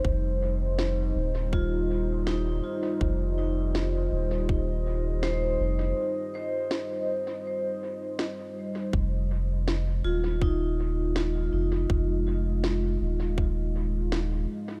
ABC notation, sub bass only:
X:1
M:4/4
L:1/8
Q:"Swing 16ths" 1/4=81
K:Fm
V:1 name="Sub bass" clef=bass
F,,,3 E,,,4 z | F,,,3 E,,,4 F,,, | z8 | F,,,3 E,,,4 F,,, |
F,,,3 E,,,4 z |]